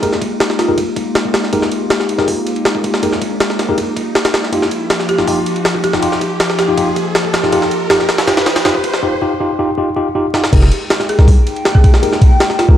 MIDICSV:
0, 0, Header, 1, 7, 480
1, 0, Start_track
1, 0, Key_signature, -4, "minor"
1, 0, Tempo, 375000
1, 36, Time_signature, 4, 2, 24, 8
1, 16352, End_track
2, 0, Start_track
2, 0, Title_t, "Marimba"
2, 0, Program_c, 0, 12
2, 753, Note_on_c, 0, 65, 85
2, 834, Note_off_c, 0, 65, 0
2, 880, Note_on_c, 0, 65, 74
2, 954, Note_off_c, 0, 65, 0
2, 6514, Note_on_c, 0, 67, 88
2, 6736, Note_off_c, 0, 67, 0
2, 7472, Note_on_c, 0, 67, 85
2, 7695, Note_off_c, 0, 67, 0
2, 8429, Note_on_c, 0, 67, 91
2, 8654, Note_off_c, 0, 67, 0
2, 9389, Note_on_c, 0, 67, 86
2, 9614, Note_off_c, 0, 67, 0
2, 9631, Note_on_c, 0, 67, 92
2, 9923, Note_off_c, 0, 67, 0
2, 10116, Note_on_c, 0, 67, 91
2, 10406, Note_off_c, 0, 67, 0
2, 10594, Note_on_c, 0, 67, 91
2, 10885, Note_off_c, 0, 67, 0
2, 11076, Note_on_c, 0, 67, 93
2, 11366, Note_off_c, 0, 67, 0
2, 14197, Note_on_c, 0, 68, 92
2, 14486, Note_off_c, 0, 68, 0
2, 15037, Note_on_c, 0, 68, 87
2, 15113, Note_off_c, 0, 68, 0
2, 15155, Note_on_c, 0, 68, 75
2, 15235, Note_off_c, 0, 68, 0
2, 16113, Note_on_c, 0, 65, 93
2, 16194, Note_off_c, 0, 65, 0
2, 16236, Note_on_c, 0, 65, 78
2, 16313, Note_off_c, 0, 65, 0
2, 16352, End_track
3, 0, Start_track
3, 0, Title_t, "Tine electric piano"
3, 0, Program_c, 1, 4
3, 31, Note_on_c, 1, 63, 78
3, 31, Note_on_c, 1, 67, 75
3, 31, Note_on_c, 1, 68, 72
3, 32, Note_on_c, 1, 70, 89
3, 170, Note_off_c, 1, 63, 0
3, 170, Note_off_c, 1, 67, 0
3, 170, Note_off_c, 1, 68, 0
3, 170, Note_off_c, 1, 70, 0
3, 875, Note_on_c, 1, 67, 74
3, 875, Note_on_c, 1, 68, 71
3, 875, Note_on_c, 1, 70, 92
3, 876, Note_on_c, 1, 63, 82
3, 1007, Note_off_c, 1, 67, 0
3, 1007, Note_off_c, 1, 68, 0
3, 1007, Note_off_c, 1, 70, 0
3, 1008, Note_off_c, 1, 63, 0
3, 1955, Note_on_c, 1, 63, 83
3, 1955, Note_on_c, 1, 67, 76
3, 1955, Note_on_c, 1, 68, 73
3, 1955, Note_on_c, 1, 70, 86
3, 2092, Note_off_c, 1, 63, 0
3, 2092, Note_off_c, 1, 67, 0
3, 2092, Note_off_c, 1, 68, 0
3, 2092, Note_off_c, 1, 70, 0
3, 2794, Note_on_c, 1, 67, 77
3, 2795, Note_on_c, 1, 63, 83
3, 2795, Note_on_c, 1, 68, 75
3, 2795, Note_on_c, 1, 70, 87
3, 2926, Note_off_c, 1, 67, 0
3, 2927, Note_off_c, 1, 63, 0
3, 2927, Note_off_c, 1, 68, 0
3, 2927, Note_off_c, 1, 70, 0
3, 3874, Note_on_c, 1, 63, 80
3, 3874, Note_on_c, 1, 70, 87
3, 3875, Note_on_c, 1, 68, 75
3, 3876, Note_on_c, 1, 67, 76
3, 4011, Note_off_c, 1, 63, 0
3, 4011, Note_off_c, 1, 70, 0
3, 4012, Note_off_c, 1, 67, 0
3, 4012, Note_off_c, 1, 68, 0
3, 4719, Note_on_c, 1, 67, 78
3, 4719, Note_on_c, 1, 70, 90
3, 4720, Note_on_c, 1, 63, 80
3, 4720, Note_on_c, 1, 68, 74
3, 4849, Note_off_c, 1, 67, 0
3, 4849, Note_off_c, 1, 68, 0
3, 4849, Note_off_c, 1, 70, 0
3, 4850, Note_off_c, 1, 63, 0
3, 5792, Note_on_c, 1, 63, 70
3, 5792, Note_on_c, 1, 65, 68
3, 5792, Note_on_c, 1, 67, 81
3, 5930, Note_off_c, 1, 63, 0
3, 5930, Note_off_c, 1, 65, 0
3, 5930, Note_off_c, 1, 67, 0
3, 6635, Note_on_c, 1, 65, 70
3, 6636, Note_on_c, 1, 63, 75
3, 6636, Note_on_c, 1, 67, 84
3, 6735, Note_off_c, 1, 63, 0
3, 6735, Note_off_c, 1, 65, 0
3, 6736, Note_off_c, 1, 67, 0
3, 6752, Note_on_c, 1, 63, 73
3, 6752, Note_on_c, 1, 65, 64
3, 6754, Note_on_c, 1, 67, 83
3, 6890, Note_off_c, 1, 63, 0
3, 6890, Note_off_c, 1, 65, 0
3, 6891, Note_off_c, 1, 67, 0
3, 7597, Note_on_c, 1, 63, 73
3, 7597, Note_on_c, 1, 67, 88
3, 7598, Note_on_c, 1, 65, 70
3, 7696, Note_off_c, 1, 63, 0
3, 7696, Note_off_c, 1, 67, 0
3, 7697, Note_off_c, 1, 65, 0
3, 7709, Note_on_c, 1, 65, 71
3, 7710, Note_on_c, 1, 63, 76
3, 7710, Note_on_c, 1, 67, 88
3, 7849, Note_off_c, 1, 63, 0
3, 7849, Note_off_c, 1, 65, 0
3, 7849, Note_off_c, 1, 67, 0
3, 8554, Note_on_c, 1, 63, 82
3, 8556, Note_on_c, 1, 65, 73
3, 8556, Note_on_c, 1, 67, 89
3, 8655, Note_off_c, 1, 63, 0
3, 8656, Note_off_c, 1, 65, 0
3, 8656, Note_off_c, 1, 67, 0
3, 8672, Note_on_c, 1, 67, 84
3, 8673, Note_on_c, 1, 63, 73
3, 8673, Note_on_c, 1, 65, 71
3, 8810, Note_off_c, 1, 67, 0
3, 8811, Note_off_c, 1, 63, 0
3, 8811, Note_off_c, 1, 65, 0
3, 9516, Note_on_c, 1, 67, 91
3, 9517, Note_on_c, 1, 63, 83
3, 9518, Note_on_c, 1, 65, 74
3, 9616, Note_off_c, 1, 63, 0
3, 9616, Note_off_c, 1, 67, 0
3, 9617, Note_off_c, 1, 65, 0
3, 9635, Note_on_c, 1, 63, 81
3, 9637, Note_on_c, 1, 65, 69
3, 9637, Note_on_c, 1, 67, 90
3, 9772, Note_off_c, 1, 63, 0
3, 9773, Note_off_c, 1, 65, 0
3, 9773, Note_off_c, 1, 67, 0
3, 10112, Note_on_c, 1, 63, 78
3, 10113, Note_on_c, 1, 65, 71
3, 10113, Note_on_c, 1, 67, 89
3, 10250, Note_off_c, 1, 63, 0
3, 10251, Note_off_c, 1, 65, 0
3, 10251, Note_off_c, 1, 67, 0
3, 10593, Note_on_c, 1, 65, 68
3, 10594, Note_on_c, 1, 67, 84
3, 10595, Note_on_c, 1, 63, 77
3, 10731, Note_off_c, 1, 65, 0
3, 10731, Note_off_c, 1, 67, 0
3, 10732, Note_off_c, 1, 63, 0
3, 11074, Note_on_c, 1, 63, 84
3, 11074, Note_on_c, 1, 65, 75
3, 11075, Note_on_c, 1, 67, 88
3, 11211, Note_off_c, 1, 63, 0
3, 11211, Note_off_c, 1, 65, 0
3, 11212, Note_off_c, 1, 67, 0
3, 11555, Note_on_c, 1, 63, 82
3, 11555, Note_on_c, 1, 65, 76
3, 11555, Note_on_c, 1, 67, 91
3, 11692, Note_off_c, 1, 63, 0
3, 11692, Note_off_c, 1, 65, 0
3, 11692, Note_off_c, 1, 67, 0
3, 11795, Note_on_c, 1, 63, 82
3, 11795, Note_on_c, 1, 65, 74
3, 11795, Note_on_c, 1, 67, 92
3, 11932, Note_off_c, 1, 63, 0
3, 11932, Note_off_c, 1, 65, 0
3, 11932, Note_off_c, 1, 67, 0
3, 12035, Note_on_c, 1, 63, 83
3, 12035, Note_on_c, 1, 65, 73
3, 12036, Note_on_c, 1, 67, 91
3, 12172, Note_off_c, 1, 63, 0
3, 12172, Note_off_c, 1, 65, 0
3, 12172, Note_off_c, 1, 67, 0
3, 12277, Note_on_c, 1, 63, 91
3, 12277, Note_on_c, 1, 65, 78
3, 12277, Note_on_c, 1, 67, 93
3, 12413, Note_off_c, 1, 63, 0
3, 12413, Note_off_c, 1, 65, 0
3, 12413, Note_off_c, 1, 67, 0
3, 12514, Note_on_c, 1, 63, 81
3, 12515, Note_on_c, 1, 65, 77
3, 12515, Note_on_c, 1, 67, 87
3, 12651, Note_off_c, 1, 63, 0
3, 12652, Note_off_c, 1, 65, 0
3, 12652, Note_off_c, 1, 67, 0
3, 12754, Note_on_c, 1, 67, 94
3, 12755, Note_on_c, 1, 63, 82
3, 12755, Note_on_c, 1, 65, 79
3, 12891, Note_off_c, 1, 67, 0
3, 12892, Note_off_c, 1, 63, 0
3, 12892, Note_off_c, 1, 65, 0
3, 12994, Note_on_c, 1, 65, 79
3, 12994, Note_on_c, 1, 67, 97
3, 12995, Note_on_c, 1, 63, 85
3, 13132, Note_off_c, 1, 63, 0
3, 13132, Note_off_c, 1, 65, 0
3, 13132, Note_off_c, 1, 67, 0
3, 13232, Note_on_c, 1, 63, 88
3, 13233, Note_on_c, 1, 65, 77
3, 13233, Note_on_c, 1, 67, 96
3, 13370, Note_off_c, 1, 63, 0
3, 13371, Note_off_c, 1, 65, 0
3, 13371, Note_off_c, 1, 67, 0
3, 13474, Note_on_c, 1, 67, 73
3, 13474, Note_on_c, 1, 68, 73
3, 13474, Note_on_c, 1, 70, 86
3, 13475, Note_on_c, 1, 63, 80
3, 13611, Note_off_c, 1, 67, 0
3, 13611, Note_off_c, 1, 68, 0
3, 13611, Note_off_c, 1, 70, 0
3, 13612, Note_off_c, 1, 63, 0
3, 14319, Note_on_c, 1, 63, 83
3, 14319, Note_on_c, 1, 67, 78
3, 14320, Note_on_c, 1, 68, 75
3, 14321, Note_on_c, 1, 70, 95
3, 14449, Note_off_c, 1, 63, 0
3, 14449, Note_off_c, 1, 67, 0
3, 14450, Note_off_c, 1, 68, 0
3, 14450, Note_off_c, 1, 70, 0
3, 15393, Note_on_c, 1, 68, 74
3, 15394, Note_on_c, 1, 63, 84
3, 15394, Note_on_c, 1, 67, 73
3, 15394, Note_on_c, 1, 70, 89
3, 15531, Note_off_c, 1, 67, 0
3, 15531, Note_off_c, 1, 68, 0
3, 15531, Note_off_c, 1, 70, 0
3, 15532, Note_off_c, 1, 63, 0
3, 16237, Note_on_c, 1, 63, 88
3, 16237, Note_on_c, 1, 68, 75
3, 16237, Note_on_c, 1, 70, 98
3, 16238, Note_on_c, 1, 67, 81
3, 16352, Note_off_c, 1, 63, 0
3, 16352, Note_off_c, 1, 67, 0
3, 16352, Note_off_c, 1, 68, 0
3, 16352, Note_off_c, 1, 70, 0
3, 16352, End_track
4, 0, Start_track
4, 0, Title_t, "Ambient pad"
4, 0, Program_c, 2, 92
4, 0, Note_on_c, 2, 56, 86
4, 0, Note_on_c, 2, 58, 81
4, 0, Note_on_c, 2, 63, 77
4, 0, Note_on_c, 2, 65, 76
4, 0, Note_on_c, 2, 67, 97
4, 5745, Note_off_c, 2, 67, 0
4, 5746, Note_off_c, 2, 56, 0
4, 5798, Note_on_c, 2, 67, 93
4, 5799, Note_on_c, 2, 53, 85
4, 11505, Note_off_c, 2, 58, 0
4, 11505, Note_off_c, 2, 63, 0
4, 11506, Note_off_c, 2, 65, 0
4, 11506, Note_off_c, 2, 67, 0
4, 11507, Note_off_c, 2, 53, 0
4, 13473, Note_on_c, 2, 56, 88
4, 13474, Note_on_c, 2, 58, 79
4, 13474, Note_on_c, 2, 63, 83
4, 13474, Note_on_c, 2, 79, 97
4, 16352, Note_off_c, 2, 56, 0
4, 16352, Note_off_c, 2, 58, 0
4, 16352, Note_off_c, 2, 63, 0
4, 16352, Note_off_c, 2, 79, 0
4, 16352, End_track
5, 0, Start_track
5, 0, Title_t, "808-style bass"
5, 0, Program_c, 3, 38
5, 13475, Note_on_c, 3, 29, 97
5, 13692, Note_off_c, 3, 29, 0
5, 14319, Note_on_c, 3, 36, 100
5, 14535, Note_off_c, 3, 36, 0
5, 16238, Note_on_c, 3, 36, 103
5, 16352, Note_off_c, 3, 36, 0
5, 16352, End_track
6, 0, Start_track
6, 0, Title_t, "Riser"
6, 0, Program_c, 4, 103
6, 0, Note_on_c, 4, 60, 77
6, 11555, Note_off_c, 4, 60, 0
6, 16352, End_track
7, 0, Start_track
7, 0, Title_t, "Drums"
7, 35, Note_on_c, 9, 51, 84
7, 160, Note_on_c, 9, 38, 38
7, 163, Note_off_c, 9, 51, 0
7, 275, Note_on_c, 9, 36, 96
7, 276, Note_on_c, 9, 51, 69
7, 288, Note_off_c, 9, 38, 0
7, 403, Note_off_c, 9, 36, 0
7, 404, Note_off_c, 9, 51, 0
7, 516, Note_on_c, 9, 38, 114
7, 516, Note_on_c, 9, 51, 89
7, 639, Note_off_c, 9, 38, 0
7, 639, Note_on_c, 9, 38, 44
7, 644, Note_off_c, 9, 51, 0
7, 755, Note_off_c, 9, 38, 0
7, 755, Note_on_c, 9, 38, 48
7, 755, Note_on_c, 9, 51, 68
7, 883, Note_off_c, 9, 38, 0
7, 883, Note_off_c, 9, 51, 0
7, 994, Note_on_c, 9, 36, 108
7, 995, Note_on_c, 9, 51, 86
7, 1122, Note_off_c, 9, 36, 0
7, 1123, Note_off_c, 9, 51, 0
7, 1234, Note_on_c, 9, 36, 96
7, 1235, Note_on_c, 9, 51, 67
7, 1362, Note_off_c, 9, 36, 0
7, 1363, Note_off_c, 9, 51, 0
7, 1475, Note_on_c, 9, 38, 115
7, 1475, Note_on_c, 9, 51, 85
7, 1598, Note_on_c, 9, 36, 91
7, 1603, Note_off_c, 9, 38, 0
7, 1603, Note_off_c, 9, 51, 0
7, 1714, Note_on_c, 9, 38, 102
7, 1714, Note_on_c, 9, 51, 77
7, 1726, Note_off_c, 9, 36, 0
7, 1839, Note_off_c, 9, 38, 0
7, 1839, Note_on_c, 9, 38, 35
7, 1842, Note_off_c, 9, 51, 0
7, 1954, Note_on_c, 9, 36, 106
7, 1954, Note_on_c, 9, 51, 87
7, 1967, Note_off_c, 9, 38, 0
7, 2078, Note_on_c, 9, 38, 41
7, 2082, Note_off_c, 9, 36, 0
7, 2082, Note_off_c, 9, 51, 0
7, 2195, Note_on_c, 9, 51, 66
7, 2206, Note_off_c, 9, 38, 0
7, 2323, Note_off_c, 9, 51, 0
7, 2435, Note_on_c, 9, 38, 118
7, 2435, Note_on_c, 9, 51, 90
7, 2559, Note_off_c, 9, 38, 0
7, 2559, Note_on_c, 9, 38, 39
7, 2563, Note_off_c, 9, 51, 0
7, 2675, Note_on_c, 9, 51, 65
7, 2687, Note_off_c, 9, 38, 0
7, 2798, Note_on_c, 9, 38, 45
7, 2803, Note_off_c, 9, 51, 0
7, 2915, Note_on_c, 9, 36, 106
7, 2916, Note_on_c, 9, 46, 82
7, 2926, Note_off_c, 9, 38, 0
7, 3043, Note_off_c, 9, 36, 0
7, 3044, Note_off_c, 9, 46, 0
7, 3156, Note_on_c, 9, 51, 68
7, 3279, Note_off_c, 9, 51, 0
7, 3279, Note_on_c, 9, 51, 42
7, 3396, Note_off_c, 9, 51, 0
7, 3396, Note_on_c, 9, 38, 110
7, 3396, Note_on_c, 9, 51, 82
7, 3519, Note_on_c, 9, 36, 92
7, 3524, Note_off_c, 9, 38, 0
7, 3524, Note_off_c, 9, 51, 0
7, 3636, Note_off_c, 9, 36, 0
7, 3636, Note_on_c, 9, 36, 99
7, 3636, Note_on_c, 9, 51, 69
7, 3761, Note_on_c, 9, 38, 57
7, 3764, Note_off_c, 9, 36, 0
7, 3764, Note_off_c, 9, 51, 0
7, 3876, Note_on_c, 9, 51, 88
7, 3889, Note_off_c, 9, 38, 0
7, 4000, Note_on_c, 9, 38, 38
7, 4004, Note_off_c, 9, 51, 0
7, 4115, Note_on_c, 9, 36, 101
7, 4116, Note_on_c, 9, 51, 70
7, 4128, Note_off_c, 9, 38, 0
7, 4243, Note_off_c, 9, 36, 0
7, 4244, Note_off_c, 9, 51, 0
7, 4356, Note_on_c, 9, 38, 113
7, 4356, Note_on_c, 9, 51, 92
7, 4481, Note_off_c, 9, 38, 0
7, 4481, Note_on_c, 9, 38, 44
7, 4484, Note_off_c, 9, 51, 0
7, 4598, Note_off_c, 9, 38, 0
7, 4598, Note_on_c, 9, 38, 46
7, 4598, Note_on_c, 9, 51, 66
7, 4726, Note_off_c, 9, 38, 0
7, 4726, Note_off_c, 9, 51, 0
7, 4835, Note_on_c, 9, 36, 106
7, 4835, Note_on_c, 9, 51, 87
7, 4963, Note_off_c, 9, 36, 0
7, 4963, Note_off_c, 9, 51, 0
7, 5075, Note_on_c, 9, 36, 96
7, 5077, Note_on_c, 9, 51, 66
7, 5203, Note_off_c, 9, 36, 0
7, 5205, Note_off_c, 9, 51, 0
7, 5316, Note_on_c, 9, 38, 105
7, 5316, Note_on_c, 9, 51, 78
7, 5439, Note_off_c, 9, 38, 0
7, 5439, Note_off_c, 9, 51, 0
7, 5439, Note_on_c, 9, 38, 105
7, 5439, Note_on_c, 9, 51, 79
7, 5555, Note_off_c, 9, 38, 0
7, 5555, Note_off_c, 9, 51, 0
7, 5555, Note_on_c, 9, 38, 106
7, 5555, Note_on_c, 9, 51, 78
7, 5681, Note_off_c, 9, 38, 0
7, 5681, Note_on_c, 9, 38, 35
7, 5683, Note_off_c, 9, 51, 0
7, 5794, Note_on_c, 9, 36, 113
7, 5794, Note_on_c, 9, 51, 86
7, 5809, Note_off_c, 9, 38, 0
7, 5919, Note_on_c, 9, 38, 42
7, 5922, Note_off_c, 9, 36, 0
7, 5922, Note_off_c, 9, 51, 0
7, 6033, Note_on_c, 9, 51, 72
7, 6047, Note_off_c, 9, 38, 0
7, 6161, Note_off_c, 9, 51, 0
7, 6273, Note_on_c, 9, 38, 113
7, 6273, Note_on_c, 9, 51, 88
7, 6396, Note_off_c, 9, 38, 0
7, 6396, Note_on_c, 9, 38, 39
7, 6401, Note_off_c, 9, 51, 0
7, 6512, Note_on_c, 9, 51, 66
7, 6524, Note_off_c, 9, 38, 0
7, 6636, Note_on_c, 9, 38, 45
7, 6640, Note_off_c, 9, 51, 0
7, 6752, Note_on_c, 9, 36, 110
7, 6752, Note_on_c, 9, 46, 79
7, 6764, Note_off_c, 9, 38, 0
7, 6880, Note_off_c, 9, 36, 0
7, 6880, Note_off_c, 9, 46, 0
7, 6992, Note_on_c, 9, 51, 67
7, 7116, Note_off_c, 9, 51, 0
7, 7116, Note_on_c, 9, 51, 43
7, 7232, Note_off_c, 9, 51, 0
7, 7232, Note_on_c, 9, 38, 112
7, 7232, Note_on_c, 9, 51, 85
7, 7356, Note_on_c, 9, 36, 94
7, 7360, Note_off_c, 9, 38, 0
7, 7360, Note_off_c, 9, 51, 0
7, 7472, Note_off_c, 9, 36, 0
7, 7472, Note_on_c, 9, 36, 97
7, 7472, Note_on_c, 9, 51, 67
7, 7596, Note_on_c, 9, 38, 58
7, 7600, Note_off_c, 9, 36, 0
7, 7600, Note_off_c, 9, 51, 0
7, 7712, Note_on_c, 9, 51, 88
7, 7724, Note_off_c, 9, 38, 0
7, 7837, Note_on_c, 9, 38, 38
7, 7840, Note_off_c, 9, 51, 0
7, 7952, Note_on_c, 9, 36, 96
7, 7953, Note_on_c, 9, 51, 69
7, 7965, Note_off_c, 9, 38, 0
7, 8080, Note_off_c, 9, 36, 0
7, 8081, Note_off_c, 9, 51, 0
7, 8192, Note_on_c, 9, 38, 117
7, 8192, Note_on_c, 9, 51, 92
7, 8316, Note_off_c, 9, 38, 0
7, 8316, Note_on_c, 9, 38, 45
7, 8320, Note_off_c, 9, 51, 0
7, 8431, Note_off_c, 9, 38, 0
7, 8431, Note_on_c, 9, 38, 50
7, 8431, Note_on_c, 9, 51, 68
7, 8559, Note_off_c, 9, 38, 0
7, 8559, Note_off_c, 9, 51, 0
7, 8672, Note_on_c, 9, 36, 105
7, 8673, Note_on_c, 9, 51, 88
7, 8800, Note_off_c, 9, 36, 0
7, 8801, Note_off_c, 9, 51, 0
7, 8912, Note_on_c, 9, 36, 97
7, 8912, Note_on_c, 9, 51, 69
7, 9040, Note_off_c, 9, 36, 0
7, 9040, Note_off_c, 9, 51, 0
7, 9151, Note_on_c, 9, 38, 111
7, 9151, Note_on_c, 9, 51, 86
7, 9276, Note_on_c, 9, 36, 93
7, 9279, Note_off_c, 9, 38, 0
7, 9279, Note_off_c, 9, 51, 0
7, 9392, Note_on_c, 9, 38, 107
7, 9392, Note_on_c, 9, 51, 83
7, 9404, Note_off_c, 9, 36, 0
7, 9516, Note_off_c, 9, 38, 0
7, 9516, Note_on_c, 9, 38, 37
7, 9520, Note_off_c, 9, 51, 0
7, 9631, Note_on_c, 9, 51, 90
7, 9632, Note_on_c, 9, 36, 111
7, 9644, Note_off_c, 9, 38, 0
7, 9757, Note_on_c, 9, 38, 43
7, 9759, Note_off_c, 9, 51, 0
7, 9760, Note_off_c, 9, 36, 0
7, 9873, Note_on_c, 9, 51, 69
7, 9885, Note_off_c, 9, 38, 0
7, 10001, Note_off_c, 9, 51, 0
7, 10112, Note_on_c, 9, 38, 119
7, 10112, Note_on_c, 9, 51, 89
7, 10237, Note_off_c, 9, 38, 0
7, 10237, Note_on_c, 9, 38, 40
7, 10240, Note_off_c, 9, 51, 0
7, 10352, Note_off_c, 9, 38, 0
7, 10352, Note_on_c, 9, 38, 104
7, 10352, Note_on_c, 9, 51, 79
7, 10475, Note_off_c, 9, 38, 0
7, 10475, Note_off_c, 9, 51, 0
7, 10475, Note_on_c, 9, 38, 111
7, 10475, Note_on_c, 9, 51, 79
7, 10592, Note_off_c, 9, 38, 0
7, 10592, Note_off_c, 9, 51, 0
7, 10592, Note_on_c, 9, 38, 106
7, 10592, Note_on_c, 9, 51, 79
7, 10716, Note_off_c, 9, 38, 0
7, 10716, Note_off_c, 9, 51, 0
7, 10716, Note_on_c, 9, 38, 106
7, 10716, Note_on_c, 9, 51, 79
7, 10832, Note_off_c, 9, 38, 0
7, 10832, Note_off_c, 9, 51, 0
7, 10832, Note_on_c, 9, 38, 103
7, 10832, Note_on_c, 9, 51, 82
7, 10956, Note_off_c, 9, 38, 0
7, 10956, Note_off_c, 9, 51, 0
7, 10956, Note_on_c, 9, 38, 103
7, 10956, Note_on_c, 9, 51, 75
7, 11072, Note_off_c, 9, 38, 0
7, 11072, Note_off_c, 9, 51, 0
7, 11072, Note_on_c, 9, 38, 116
7, 11072, Note_on_c, 9, 51, 91
7, 11197, Note_on_c, 9, 36, 96
7, 11200, Note_off_c, 9, 38, 0
7, 11200, Note_off_c, 9, 51, 0
7, 11312, Note_on_c, 9, 51, 72
7, 11313, Note_off_c, 9, 36, 0
7, 11313, Note_on_c, 9, 36, 96
7, 11437, Note_on_c, 9, 38, 60
7, 11440, Note_off_c, 9, 51, 0
7, 11441, Note_off_c, 9, 36, 0
7, 11565, Note_off_c, 9, 38, 0
7, 13234, Note_on_c, 9, 38, 63
7, 13358, Note_off_c, 9, 38, 0
7, 13358, Note_on_c, 9, 38, 75
7, 13475, Note_on_c, 9, 36, 111
7, 13475, Note_on_c, 9, 49, 89
7, 13475, Note_on_c, 9, 51, 89
7, 13486, Note_off_c, 9, 38, 0
7, 13600, Note_on_c, 9, 38, 43
7, 13603, Note_off_c, 9, 36, 0
7, 13603, Note_off_c, 9, 49, 0
7, 13603, Note_off_c, 9, 51, 0
7, 13716, Note_on_c, 9, 51, 72
7, 13728, Note_off_c, 9, 38, 0
7, 13844, Note_off_c, 9, 51, 0
7, 13956, Note_on_c, 9, 38, 120
7, 13956, Note_on_c, 9, 51, 89
7, 14078, Note_off_c, 9, 38, 0
7, 14078, Note_on_c, 9, 38, 40
7, 14084, Note_off_c, 9, 51, 0
7, 14196, Note_on_c, 9, 51, 67
7, 14206, Note_off_c, 9, 38, 0
7, 14320, Note_on_c, 9, 38, 47
7, 14324, Note_off_c, 9, 51, 0
7, 14436, Note_on_c, 9, 36, 113
7, 14436, Note_on_c, 9, 46, 80
7, 14448, Note_off_c, 9, 38, 0
7, 14564, Note_off_c, 9, 36, 0
7, 14564, Note_off_c, 9, 46, 0
7, 14678, Note_on_c, 9, 51, 69
7, 14802, Note_off_c, 9, 51, 0
7, 14802, Note_on_c, 9, 51, 43
7, 14917, Note_off_c, 9, 51, 0
7, 14917, Note_on_c, 9, 38, 114
7, 14917, Note_on_c, 9, 51, 87
7, 15039, Note_on_c, 9, 36, 98
7, 15045, Note_off_c, 9, 38, 0
7, 15045, Note_off_c, 9, 51, 0
7, 15156, Note_off_c, 9, 36, 0
7, 15156, Note_on_c, 9, 36, 97
7, 15157, Note_on_c, 9, 51, 72
7, 15281, Note_on_c, 9, 38, 59
7, 15284, Note_off_c, 9, 36, 0
7, 15285, Note_off_c, 9, 51, 0
7, 15397, Note_on_c, 9, 51, 91
7, 15409, Note_off_c, 9, 38, 0
7, 15521, Note_on_c, 9, 38, 39
7, 15525, Note_off_c, 9, 51, 0
7, 15635, Note_on_c, 9, 36, 101
7, 15637, Note_on_c, 9, 51, 72
7, 15649, Note_off_c, 9, 38, 0
7, 15763, Note_off_c, 9, 36, 0
7, 15765, Note_off_c, 9, 51, 0
7, 15876, Note_on_c, 9, 38, 122
7, 15876, Note_on_c, 9, 51, 92
7, 15999, Note_off_c, 9, 38, 0
7, 15999, Note_on_c, 9, 38, 42
7, 16004, Note_off_c, 9, 51, 0
7, 16115, Note_off_c, 9, 38, 0
7, 16115, Note_on_c, 9, 38, 48
7, 16115, Note_on_c, 9, 51, 69
7, 16243, Note_off_c, 9, 38, 0
7, 16243, Note_off_c, 9, 51, 0
7, 16352, End_track
0, 0, End_of_file